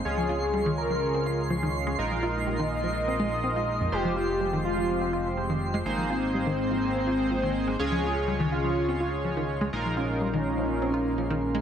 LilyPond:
<<
  \new Staff \with { instrumentName = "Synth texture" } { \time 4/4 \key des \lydian \tempo 4 = 124 c'''1~ | c'''1~ | c'''1~ | c'''1~ |
c'''1~ | c'''1 | }
  \new Staff \with { instrumentName = "Analog synth lead" } { \time 4/4 \key des \lydian aes'4. bes'4. r4 | r8 ees''2.~ ees''8 | g'4. f'4. r4 | r8 c'2.~ c'8 |
aes'4. f'4. r4 | r8 des'2.~ des'8 | }
  \new Staff \with { instrumentName = "Analog polysynth" } { \time 4/4 \key des \lydian <aes des' f' des''>1 | <aes ees' f' bes'>1 | <aes f' g' c''>1 | <bes ees' aes' c''>1 |
<aes des' f' des''>1 | <aes ees' f' bes'>1 | }
  \new Staff \with { instrumentName = "Analog synth pad" } { \time 4/4 \key des \lydian <des des' f' aes'>1 | <aes bes ees'>1 | <f aes c' g'>1 | <aes bes c'>1 |
<des des' f' aes'>1 | <aes bes ees'>1 | }
  \new Staff \with { instrumentName = "Synth pluck" } { \clef bass \time 4/4 \key des \lydian r16 f16 f'16 r16 g16 ees16 r16 f16 r16 c'16 f'16 r16 f16 ees16 r16 aes16 | r16 f16 f'16 r16 g16 ees16 r16 f16 r16 c'16 aes16 r16 c'16 f'16 r16 f,16 | r16 f16 f'16 r16 g16 ees16 r16 f16 r16 c'16 f'16 r16 f16 ees16 r16 aes16 | r16 f16 f'16 r16 g16 ees16 r16 f16 r16 c'16 f'16 r16 f16 ees16 r16 aes16 |
r16 f16 f'16 r16 g16 ees16 r16 f16 r16 c'16 f'16 r16 f16 ees16 r16 aes16 | r16 f16 f'16 r16 g16 ees16 r16 f16 r16 c'16 f'16 r16 f16 ees16 r16 aes16 | }
  \new Staff \with { instrumentName = "Analog synth bass" } { \clef bass \time 4/4 \key des \lydian des,1 | bes,,1 | f,,1 | aes,,1 |
des,1 | bes,,1 | }
>>